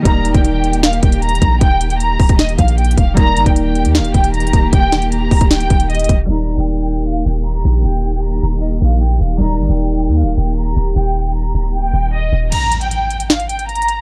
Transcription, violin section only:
X:1
M:4/4
L:1/16
Q:1/4=154
K:Eb
V:1 name="Violin section"
b3 g g4 f2 g2 b4 | g3 g b4 e2 f2 g2 f2 | b3 g g4 f2 g2 b4 | g3 g b4 g4 e2 z2 |
b3 g g4 f2 g2 b4 | g3 g b4 e2 f2 g2 f2 | b3 g g4 f2 g2 b4 | g3 g b4 g4 e2 z2 |
b3 g g4 f2 g2 b4 |]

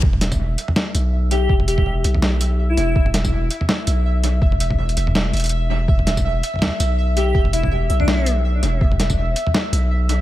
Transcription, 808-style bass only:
X:1
M:4/4
L:1/8
Q:"Swing 16ths" 1/4=164
K:Em
V:1 name="808-style bass" clef=bass
E,,,3 z2 B,,,3 | E,,,3 B,,,4 E,,, | E,,,3 z2 B,,,3 | E,,,3 E,,,2 E,,,3 |
E,,,3 z2 B,,,3 | E,,,3 B,,,4 E,,, | E,,,3 z2 B,,,3 |]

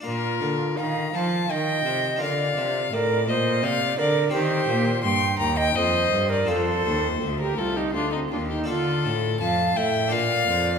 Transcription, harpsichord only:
X:1
M:3/4
L:1/8
Q:1/4=84
K:Bb
V:1 name="Harpsichord"
[DFB]6 | [DFB]6 | [CGB]6 | [CFA]6 |
[K:Dm] [DFA]4 [DFB]2 |]
V:2 name="Harpsichord" clef=bass
B,, D, E, F, E, C, | D, C, A,, B,, C, D, | E, B,, G,, E,, F,, G,, | F,, E,, D,, C,, D,, E,, |
[K:Dm] D, A,, F,, A,, B,, F,, |]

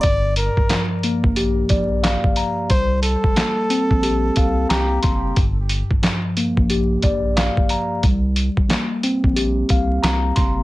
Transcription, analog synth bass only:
X:1
M:4/4
L:1/16
Q:"Swing 16ths" 1/4=90
K:Gm
V:1 name="Analog synth bass" clef=bass
G,,,3 z4 B,,,3 B,,,3 z3 | C,,3 z4 B,,,3 C,,2 C,,2 ^F,,,2 | G,,,3 z4 B,,,3 B,,,3 z3 | C,,3 z4 B,,,3 C,,2 C,,2 ^F,,,2 |]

